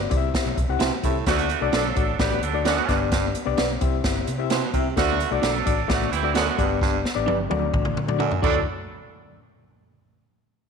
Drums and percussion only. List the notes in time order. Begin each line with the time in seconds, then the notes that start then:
0.11 kick, closed hi-hat
0.34 kick, snare, closed hi-hat
0.57 kick, closed hi-hat
0.80 snare, closed hi-hat
1.04 kick, closed hi-hat
1.26 kick, snare, closed hi-hat
1.38 closed hi-hat
1.49 closed hi-hat
1.73 snare, closed hi-hat
1.96 kick, closed hi-hat
2.19 kick, snare, closed hi-hat
2.43 closed hi-hat
2.65 snare, closed hi-hat
2.89 kick, snare, closed hi-hat
3.12 kick, snare, closed hi-hat
3.35 closed hi-hat
3.58 snare, closed hi-hat
3.81 kick, closed hi-hat
4.04 kick, snare, closed hi-hat
4.27 closed hi-hat
4.50 snare, closed hi-hat
4.74 kick, closed hi-hat
4.97 kick, snare, closed hi-hat
5.20 closed hi-hat
5.43 snare, closed hi-hat
5.67 kick, closed hi-hat
5.89 kick, snare, closed hi-hat
6.13 closed hi-hat
6.35 snare, closed hi-hat
6.59 kick, closed hi-hat
6.81 kick, snare
7.05 snare
7.28 high tom
7.51 high tom
7.74 kick, mid tom
7.85 mid tom
7.97 mid tom
8.08 mid tom
8.20 mid tom
8.31 floor tom
8.43 kick, crash